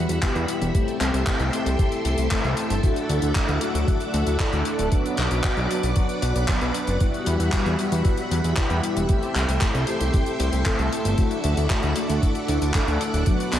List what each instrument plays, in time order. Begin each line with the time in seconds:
Already playing: analog polysynth G3 B3 E4 F#4, string machine G3 E5 F#5 B5
0.09 analog synth bass E2, closed hi-hat
0.22 analog polysynth G3 B3 E4 G4, kick, clap, closed hi-hat
0.35 analog synth bass E2, closed hi-hat
0.48 closed hi-hat
0.61 analog synth bass E1, closed hi-hat
0.74 analog polysynth A3 C4 E4 G4, string machine A4 G5 C6, kick, closed hi-hat
0.88 closed hi-hat
1.01 analog synth bass C2, clap, closed hi-hat
1.14 analog synth bass C2, closed hi-hat
1.27 kick, clap, closed hi-hat
1.40 analog synth bass C2, closed hi-hat
1.53 analog polysynth A3 C4 E4 G4, closed hi-hat
1.66 analog synth bass C2, closed hi-hat
1.79 kick, closed hi-hat
1.92 closed hi-hat
2.05 analog synth bass C2, closed hi-hat
2.18 analog synth bass C2, closed hi-hat
2.31 analog polysynth A3 C4 E4 A4, kick, clap, closed hi-hat
2.44 analog synth bass C2, closed hi-hat
2.57 closed hi-hat
2.70 analog synth bass G1, closed hi-hat
2.83 analog polysynth A3 D4 E4 F#4, string machine F#5 D6, kick, closed hi-hat
2.96 closed hi-hat
3.09 analog synth bass D2, closed hi-hat
3.22 analog synth bass D2, closed hi-hat
3.35 kick, clap, closed hi-hat
3.49 analog synth bass D2, closed hi-hat
3.61 analog polysynth A3 D4 E4 F#4, closed hi-hat
3.75 analog synth bass D2, closed hi-hat
3.88 kick, closed hi-hat
4.00 closed hi-hat
4.14 analog synth bass D2, closed hi-hat
4.27 analog synth bass D2, closed hi-hat
4.40 analog polysynth A3 D4 E4 A4, kick, clap, closed hi-hat
4.53 analog synth bass D2, closed hi-hat
4.65 closed hi-hat
4.79 analog synth bass D1, closed hi-hat
4.92 analog polysynth F#3 B3 D4 F#4, string machine B4 D5 F#5 D6, kick, closed hi-hat
5.06 closed hi-hat
5.17 analog synth bass B1, clap, closed hi-hat
5.31 analog synth bass B1, closed hi-hat
5.44 kick, clap, closed hi-hat
5.57 analog synth bass B1, closed hi-hat
5.70 analog polysynth F#3 B3 D4 F#4, closed hi-hat
5.83 analog synth bass B1, closed hi-hat
5.96 kick, closed hi-hat
6.09 closed hi-hat
6.22 analog synth bass B1, closed hi-hat
6.35 analog synth bass B1, analog polysynth F#3 B3 D4 B4, closed hi-hat
6.48 kick, clap, closed hi-hat
6.61 analog synth bass B1, closed hi-hat
6.74 closed hi-hat
6.87 analog synth bass F#1, closed hi-hat
7.00 string machine G3 E5 B5, analog polysynth G3 B3 E4 F#4, kick, closed hi-hat
7.14 closed hi-hat
7.26 analog synth bass E2, closed hi-hat
7.40 analog synth bass E2, closed hi-hat
7.52 kick, clap, closed hi-hat
7.66 analog synth bass E2, closed hi-hat
7.79 analog polysynth G3 B3 E4 F#4, closed hi-hat
7.92 analog synth bass E2, closed hi-hat
8.05 kick, closed hi-hat
8.17 closed hi-hat
8.31 analog synth bass E2, closed hi-hat
8.44 analog synth bass E2, closed hi-hat
8.57 analog polysynth G3 B3 E4 G4, kick, clap, closed hi-hat
8.70 analog synth bass E2, closed hi-hat
8.84 closed hi-hat
8.96 analog synth bass E1, closed hi-hat
9.09 analog polysynth A3 C4 E4 G4, string machine A4 G5 C6, kick, closed hi-hat
9.23 closed hi-hat
9.35 analog synth bass C2, clap, closed hi-hat
9.48 analog synth bass C2, closed hi-hat
9.61 kick, clap, closed hi-hat
9.75 analog synth bass C2, closed hi-hat
9.87 analog polysynth A3 C4 E4 G4, closed hi-hat
10.01 analog synth bass C2, closed hi-hat
10.14 kick, closed hi-hat
10.26 closed hi-hat
10.40 analog synth bass C2, closed hi-hat
10.53 analog synth bass C2, closed hi-hat
10.66 analog polysynth A3 C4 E4 A4, kick, clap, closed hi-hat
10.79 analog synth bass C2, closed hi-hat
10.93 closed hi-hat
11.05 analog synth bass G1, closed hi-hat
11.18 analog polysynth A3 D4 E4 F#4, string machine F#5 D6, kick, closed hi-hat
11.31 closed hi-hat
11.44 analog synth bass D2, closed hi-hat
11.57 analog synth bass D2, closed hi-hat
11.70 kick, clap, closed hi-hat
11.83 analog synth bass D2, closed hi-hat
11.96 analog polysynth A3 D4 E4 F#4, closed hi-hat
12.09 analog synth bass D2, closed hi-hat
12.22 kick, closed hi-hat
12.35 closed hi-hat
12.48 analog synth bass D2, closed hi-hat
12.62 analog synth bass D2, closed hi-hat
12.74 analog polysynth A3 D4 E4 A4, kick, clap, closed hi-hat
12.88 analog synth bass D2, closed hi-hat
13.01 closed hi-hat
13.14 analog synth bass D1, closed hi-hat
13.26 analog polysynth F#3 B3 D4 F#4, string machine B4 D5 D6, kick, closed hi-hat
13.40 closed hi-hat
13.53 analog synth bass B1, clap, closed hi-hat